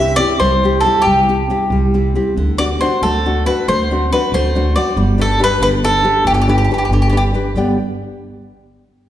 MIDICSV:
0, 0, Header, 1, 4, 480
1, 0, Start_track
1, 0, Key_signature, 1, "major"
1, 0, Tempo, 432900
1, 1169, Time_signature, 6, 3, 24, 8
1, 10079, End_track
2, 0, Start_track
2, 0, Title_t, "Mandolin"
2, 0, Program_c, 0, 25
2, 0, Note_on_c, 0, 76, 96
2, 179, Note_on_c, 0, 74, 113
2, 185, Note_off_c, 0, 76, 0
2, 416, Note_off_c, 0, 74, 0
2, 439, Note_on_c, 0, 72, 88
2, 889, Note_off_c, 0, 72, 0
2, 893, Note_on_c, 0, 69, 81
2, 1128, Note_on_c, 0, 67, 78
2, 1158, Note_off_c, 0, 69, 0
2, 2068, Note_off_c, 0, 67, 0
2, 2865, Note_on_c, 0, 74, 99
2, 2930, Note_off_c, 0, 74, 0
2, 3112, Note_on_c, 0, 72, 83
2, 3352, Note_off_c, 0, 72, 0
2, 3357, Note_on_c, 0, 69, 78
2, 3802, Note_off_c, 0, 69, 0
2, 3840, Note_on_c, 0, 71, 84
2, 4059, Note_off_c, 0, 71, 0
2, 4085, Note_on_c, 0, 72, 83
2, 4524, Note_off_c, 0, 72, 0
2, 4575, Note_on_c, 0, 71, 85
2, 4784, Note_off_c, 0, 71, 0
2, 4815, Note_on_c, 0, 72, 82
2, 5270, Note_off_c, 0, 72, 0
2, 5275, Note_on_c, 0, 74, 89
2, 5490, Note_off_c, 0, 74, 0
2, 5783, Note_on_c, 0, 69, 93
2, 5984, Note_off_c, 0, 69, 0
2, 6028, Note_on_c, 0, 71, 113
2, 6226, Note_off_c, 0, 71, 0
2, 6238, Note_on_c, 0, 71, 106
2, 6300, Note_off_c, 0, 71, 0
2, 6481, Note_on_c, 0, 69, 108
2, 6912, Note_off_c, 0, 69, 0
2, 6951, Note_on_c, 0, 67, 81
2, 7018, Note_off_c, 0, 67, 0
2, 7033, Note_on_c, 0, 67, 57
2, 7100, Note_off_c, 0, 67, 0
2, 7114, Note_on_c, 0, 67, 63
2, 7182, Note_off_c, 0, 67, 0
2, 7201, Note_on_c, 0, 67, 58
2, 7267, Note_off_c, 0, 67, 0
2, 7295, Note_on_c, 0, 67, 58
2, 7356, Note_off_c, 0, 67, 0
2, 7368, Note_on_c, 0, 67, 48
2, 7433, Note_off_c, 0, 67, 0
2, 7471, Note_on_c, 0, 67, 55
2, 7509, Note_off_c, 0, 67, 0
2, 7522, Note_on_c, 0, 67, 53
2, 7583, Note_off_c, 0, 67, 0
2, 7596, Note_on_c, 0, 67, 48
2, 7671, Note_off_c, 0, 67, 0
2, 7687, Note_on_c, 0, 67, 49
2, 7759, Note_off_c, 0, 67, 0
2, 7784, Note_on_c, 0, 67, 57
2, 7849, Note_off_c, 0, 67, 0
2, 7868, Note_on_c, 0, 67, 50
2, 7933, Note_off_c, 0, 67, 0
2, 7954, Note_on_c, 0, 67, 76
2, 8017, Note_off_c, 0, 67, 0
2, 10079, End_track
3, 0, Start_track
3, 0, Title_t, "Nylon-string guitar"
3, 0, Program_c, 1, 24
3, 0, Note_on_c, 1, 48, 69
3, 0, Note_on_c, 1, 60, 46
3, 0, Note_on_c, 1, 64, 47
3, 0, Note_on_c, 1, 67, 58
3, 187, Note_off_c, 1, 60, 0
3, 196, Note_off_c, 1, 64, 0
3, 198, Note_off_c, 1, 67, 0
3, 199, Note_off_c, 1, 48, 0
3, 200, Note_on_c, 1, 60, 61
3, 208, Note_on_c, 1, 64, 49
3, 215, Note_on_c, 1, 67, 65
3, 455, Note_on_c, 1, 55, 54
3, 588, Note_off_c, 1, 60, 0
3, 594, Note_off_c, 1, 64, 0
3, 595, Note_off_c, 1, 67, 0
3, 706, Note_on_c, 1, 60, 54
3, 714, Note_on_c, 1, 64, 42
3, 721, Note_on_c, 1, 67, 61
3, 918, Note_off_c, 1, 55, 0
3, 927, Note_off_c, 1, 64, 0
3, 930, Note_off_c, 1, 60, 0
3, 941, Note_off_c, 1, 67, 0
3, 941, Note_on_c, 1, 64, 48
3, 943, Note_on_c, 1, 60, 48
3, 955, Note_on_c, 1, 67, 60
3, 1177, Note_on_c, 1, 55, 58
3, 1320, Note_off_c, 1, 64, 0
3, 1322, Note_off_c, 1, 60, 0
3, 1328, Note_off_c, 1, 67, 0
3, 1426, Note_on_c, 1, 60, 41
3, 1431, Note_on_c, 1, 64, 45
3, 1439, Note_on_c, 1, 67, 50
3, 1640, Note_off_c, 1, 55, 0
3, 1649, Note_off_c, 1, 60, 0
3, 1653, Note_off_c, 1, 64, 0
3, 1657, Note_off_c, 1, 67, 0
3, 1662, Note_on_c, 1, 60, 50
3, 1665, Note_on_c, 1, 64, 50
3, 1673, Note_on_c, 1, 67, 62
3, 1909, Note_on_c, 1, 55, 52
3, 2044, Note_off_c, 1, 60, 0
3, 2046, Note_off_c, 1, 64, 0
3, 2049, Note_off_c, 1, 67, 0
3, 2152, Note_on_c, 1, 60, 45
3, 2158, Note_on_c, 1, 64, 41
3, 2162, Note_on_c, 1, 67, 53
3, 2370, Note_off_c, 1, 55, 0
3, 2375, Note_off_c, 1, 60, 0
3, 2376, Note_off_c, 1, 64, 0
3, 2382, Note_off_c, 1, 67, 0
3, 2389, Note_on_c, 1, 60, 49
3, 2390, Note_on_c, 1, 64, 43
3, 2396, Note_on_c, 1, 67, 50
3, 2577, Note_off_c, 1, 60, 0
3, 2578, Note_off_c, 1, 64, 0
3, 2581, Note_off_c, 1, 67, 0
3, 2633, Note_on_c, 1, 50, 57
3, 2869, Note_on_c, 1, 60, 43
3, 2874, Note_on_c, 1, 62, 42
3, 2878, Note_on_c, 1, 66, 55
3, 3097, Note_off_c, 1, 50, 0
3, 3103, Note_off_c, 1, 60, 0
3, 3103, Note_off_c, 1, 62, 0
3, 3106, Note_off_c, 1, 66, 0
3, 3114, Note_on_c, 1, 60, 56
3, 3118, Note_on_c, 1, 62, 49
3, 3124, Note_on_c, 1, 66, 66
3, 3370, Note_on_c, 1, 57, 58
3, 3499, Note_off_c, 1, 60, 0
3, 3499, Note_off_c, 1, 62, 0
3, 3501, Note_off_c, 1, 66, 0
3, 3612, Note_on_c, 1, 60, 48
3, 3615, Note_on_c, 1, 62, 39
3, 3620, Note_on_c, 1, 66, 53
3, 3827, Note_off_c, 1, 57, 0
3, 3832, Note_off_c, 1, 60, 0
3, 3838, Note_off_c, 1, 66, 0
3, 3839, Note_off_c, 1, 62, 0
3, 3845, Note_on_c, 1, 60, 56
3, 3852, Note_on_c, 1, 62, 49
3, 3853, Note_on_c, 1, 66, 61
3, 4087, Note_on_c, 1, 57, 67
3, 4224, Note_off_c, 1, 60, 0
3, 4227, Note_off_c, 1, 66, 0
3, 4228, Note_off_c, 1, 62, 0
3, 4336, Note_on_c, 1, 60, 55
3, 4343, Note_on_c, 1, 62, 49
3, 4348, Note_on_c, 1, 66, 46
3, 4544, Note_off_c, 1, 57, 0
3, 4561, Note_off_c, 1, 60, 0
3, 4562, Note_off_c, 1, 62, 0
3, 4572, Note_off_c, 1, 66, 0
3, 4573, Note_on_c, 1, 60, 55
3, 4579, Note_on_c, 1, 62, 50
3, 4585, Note_on_c, 1, 66, 59
3, 4808, Note_on_c, 1, 57, 63
3, 4945, Note_off_c, 1, 60, 0
3, 4945, Note_off_c, 1, 62, 0
3, 4951, Note_off_c, 1, 66, 0
3, 5049, Note_on_c, 1, 62, 46
3, 5056, Note_on_c, 1, 60, 52
3, 5061, Note_on_c, 1, 66, 60
3, 5259, Note_off_c, 1, 57, 0
3, 5275, Note_off_c, 1, 60, 0
3, 5278, Note_off_c, 1, 62, 0
3, 5280, Note_off_c, 1, 66, 0
3, 5288, Note_on_c, 1, 60, 49
3, 5294, Note_on_c, 1, 62, 53
3, 5294, Note_on_c, 1, 66, 61
3, 5468, Note_off_c, 1, 60, 0
3, 5470, Note_off_c, 1, 62, 0
3, 5472, Note_off_c, 1, 66, 0
3, 5513, Note_on_c, 1, 55, 62
3, 5744, Note_on_c, 1, 62, 50
3, 5751, Note_on_c, 1, 67, 54
3, 5759, Note_on_c, 1, 71, 60
3, 5968, Note_off_c, 1, 62, 0
3, 5969, Note_off_c, 1, 55, 0
3, 5974, Note_off_c, 1, 67, 0
3, 5982, Note_on_c, 1, 62, 58
3, 5985, Note_off_c, 1, 71, 0
3, 5987, Note_on_c, 1, 67, 48
3, 5999, Note_on_c, 1, 71, 60
3, 6230, Note_on_c, 1, 50, 65
3, 6361, Note_off_c, 1, 62, 0
3, 6365, Note_off_c, 1, 67, 0
3, 6371, Note_off_c, 1, 71, 0
3, 6473, Note_on_c, 1, 62, 49
3, 6478, Note_on_c, 1, 67, 48
3, 6489, Note_on_c, 1, 71, 51
3, 6684, Note_off_c, 1, 62, 0
3, 6685, Note_off_c, 1, 50, 0
3, 6686, Note_off_c, 1, 67, 0
3, 6686, Note_off_c, 1, 71, 0
3, 6695, Note_on_c, 1, 62, 51
3, 6700, Note_on_c, 1, 67, 52
3, 6707, Note_on_c, 1, 71, 66
3, 6946, Note_on_c, 1, 50, 57
3, 7077, Note_off_c, 1, 62, 0
3, 7079, Note_off_c, 1, 67, 0
3, 7079, Note_off_c, 1, 71, 0
3, 7186, Note_on_c, 1, 67, 51
3, 7187, Note_on_c, 1, 62, 46
3, 7192, Note_on_c, 1, 71, 53
3, 7403, Note_off_c, 1, 50, 0
3, 7424, Note_off_c, 1, 67, 0
3, 7429, Note_off_c, 1, 62, 0
3, 7432, Note_off_c, 1, 71, 0
3, 7438, Note_on_c, 1, 67, 49
3, 7441, Note_on_c, 1, 62, 49
3, 7448, Note_on_c, 1, 71, 57
3, 7679, Note_on_c, 1, 50, 65
3, 7811, Note_off_c, 1, 67, 0
3, 7814, Note_off_c, 1, 62, 0
3, 7816, Note_off_c, 1, 71, 0
3, 7901, Note_on_c, 1, 71, 50
3, 7905, Note_on_c, 1, 62, 47
3, 7909, Note_on_c, 1, 67, 41
3, 8126, Note_off_c, 1, 62, 0
3, 8133, Note_off_c, 1, 50, 0
3, 8133, Note_off_c, 1, 67, 0
3, 8136, Note_off_c, 1, 71, 0
3, 8140, Note_on_c, 1, 62, 43
3, 8146, Note_on_c, 1, 67, 44
3, 8151, Note_on_c, 1, 71, 50
3, 8331, Note_off_c, 1, 62, 0
3, 8334, Note_off_c, 1, 67, 0
3, 8336, Note_off_c, 1, 71, 0
3, 8379, Note_on_c, 1, 43, 46
3, 8385, Note_on_c, 1, 50, 44
3, 8392, Note_on_c, 1, 67, 44
3, 8394, Note_on_c, 1, 59, 47
3, 8397, Note_on_c, 1, 74, 42
3, 8402, Note_on_c, 1, 79, 53
3, 8602, Note_off_c, 1, 43, 0
3, 8605, Note_off_c, 1, 50, 0
3, 8609, Note_off_c, 1, 59, 0
3, 8609, Note_off_c, 1, 67, 0
3, 8612, Note_off_c, 1, 74, 0
3, 8615, Note_off_c, 1, 79, 0
3, 10079, End_track
4, 0, Start_track
4, 0, Title_t, "Upright bass"
4, 0, Program_c, 2, 32
4, 0, Note_on_c, 2, 36, 109
4, 191, Note_off_c, 2, 36, 0
4, 450, Note_on_c, 2, 36, 91
4, 918, Note_off_c, 2, 36, 0
4, 1174, Note_on_c, 2, 36, 87
4, 1641, Note_off_c, 2, 36, 0
4, 1887, Note_on_c, 2, 36, 97
4, 2360, Note_off_c, 2, 36, 0
4, 2622, Note_on_c, 2, 38, 85
4, 3094, Note_off_c, 2, 38, 0
4, 3350, Note_on_c, 2, 38, 90
4, 3820, Note_off_c, 2, 38, 0
4, 4081, Note_on_c, 2, 38, 102
4, 4544, Note_off_c, 2, 38, 0
4, 4790, Note_on_c, 2, 38, 104
4, 5253, Note_off_c, 2, 38, 0
4, 5503, Note_on_c, 2, 31, 108
4, 5967, Note_off_c, 2, 31, 0
4, 6213, Note_on_c, 2, 31, 96
4, 6679, Note_off_c, 2, 31, 0
4, 6926, Note_on_c, 2, 31, 106
4, 7395, Note_off_c, 2, 31, 0
4, 7639, Note_on_c, 2, 31, 100
4, 8114, Note_off_c, 2, 31, 0
4, 8367, Note_on_c, 2, 31, 79
4, 8596, Note_off_c, 2, 31, 0
4, 10079, End_track
0, 0, End_of_file